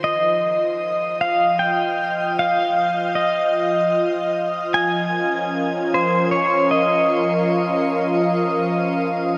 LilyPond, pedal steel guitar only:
\new Staff \with { instrumentName = "Pedal steel guitar" } { \time 3/4 \key f \minor \tempo 4 = 76 ees''4. f''8 g''4 | f''4 ees''4. r8 | aes''4 r8 c''8 des''8 ees''8~ | ees''2~ ees''8 r8 | }